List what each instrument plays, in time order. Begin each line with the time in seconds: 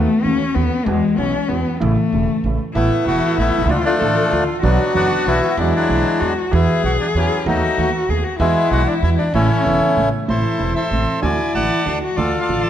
Already playing: cello A3
0.24 upright bass D#2, grand piano D#2 D#3 A3 B3 F#4, cello C#4
0.55 grand piano D#2 D#3 A3 B3 F#4, upright bass D#2, cello B3
0.86 upright bass E2, grand piano E2 E3 G#3 B3 F#4, cello G#3
1.18 upright bass B1, grand piano B1 B2 E3 G#3 B3 F#4, cello C#4
1.49 upright bass E2, grand piano E2 E3 G#3 B3 F#4, cello B3
1.80 grand piano A1 A2 C#3 E3 A3 E4, upright bass A1, cello A3
2.13 upright bass E1, grand piano E1 E2 C#3 E3 A3 E4
2.44 upright bass A1, grand piano A1 A2 C#3 E3 A3 E4
2.74 grand piano A1 A2 E3 A3 B3 A4, upright bass A1, bandoneon A3 B3 E4, cello E4
3.06 upright bass E1, grand piano E1 E2 E3 A3 B3 A4, bandoneon A3 B3 F#4
3.38 upright bass A1, grand piano A1 A2 E3 A3 B3 A4, bandoneon A3 B3 E4
3.58 upright bass B1, grand piano B1 C2
3.62 upright bass C2 C#2, grand piano C#2
3.67 grand piano D2 D3 F3 A3 E4, upright bass D2, bandoneon F3 A3 D4, cello F4
3.85 bandoneon F3 A3 D4
4.00 grand piano A1 A2 D3 F3 A3 E4, upright bass A1, cello A4
4.30 grand piano D2 D3 F3 A3 E4, upright bass D2, cello F4
4.63 grand piano B1 B2 D3 F#3 B3 F#4, upright bass B1, bandoneon F#3 B3 D4, cello F#4
4.94 grand piano F#1 F#2 D3 F#3 B3 F#4, upright bass F#1, bandoneon B3 D4 F#4
5.26 upright bass B1, grand piano B1 B2 D3 F#3 B3 F#4, bandoneon B3 E4
5.57 upright bass E2, grand piano E2 E3 G#3 B3 F#4, bandoneon F#3 G#3 D4, cello E4
5.76 bandoneon F#3 G#3 D4
5.88 grand piano B1 B2 E3 G#3 B3 F#4, upright bass B1
6.20 upright bass E2, grand piano E2 E3 G#3 B3 F#4, cello F#4
6.51 grand piano E2 E3 F#3 B3 F#4, upright bass E2, bandoneon B3 E4, cello G#4
6.83 grand piano B1 B2 E3 F#3 B3 F#4, upright bass B1, bandoneon F#4
7.00 bandoneon D4
7.15 upright bass E2, grand piano E2 E3 F#3 B3 F#4, bandoneon E3 F#3 C#4
7.46 upright bass D#2, grand piano D#2 D#3 A3 B3 F#4, bandoneon F#3 A3 D#4, cello F#4
7.77 upright bass D#2, grand piano D#2 D#3 A3 B3 F#4
8.09 upright bass D#2, grand piano D#2 D#3 A3 B3 F#4, cello G#4
8.24 cello F#4
8.39 upright bass E2, grand piano E2 E3 G#3 B3 F#4, bandoneon G#3 B3 E4, cello E4
8.71 upright bass B1, grand piano B1 B2 E3 G#3 B3 F#4, bandoneon F#4
8.87 bandoneon D4
9.03 upright bass E2, grand piano E2 E3 G#3 B3 F#4, bandoneon E4
9.18 bandoneon D4
9.34 upright bass A1, grand piano A1 A2 C#3 E3 A3 E4, bandoneon A3 C#4 E4, cello C#4
9.65 grand piano E1 E2 C#3 E3 A3 E4, upright bass E1, cello B3
9.97 upright bass A1, grand piano A1 A2 C#3 E3 A3 E4, cello A3
10.28 grand piano A1 A2 C3 E3 A3 E4, upright bass A1, cello E4, bandoneon E4 A4 C5
10.59 grand piano E1 E2 C3 E3 A3 E4, upright bass E1
10.76 bandoneon A4 C5 E5
10.91 upright bass A1, grand piano A1 A2 C3 E3 A3 E4, cello C4
11.22 grand piano D2 D3 F#3 A3 F#4, upright bass D2, cello E4, bandoneon D5 G#5
11.54 upright bass A1, grand piano A1 A2 D3 F#3 A3 F#4, bandoneon D5 F#5 A5
11.86 grand piano D2 D3 F#3 A3 F#4, upright bass D2, cello D4
12.03 cello F#4
12.16 grand piano D2 D3 F3 A3 F4, upright bass D2, cello F4, bandoneon F4 A4 D5
12.41 bandoneon A4 D5 F5
12.49 grand piano A1 A2 D3 F3 A3 F4, upright bass A1
12.63 bandoneon A5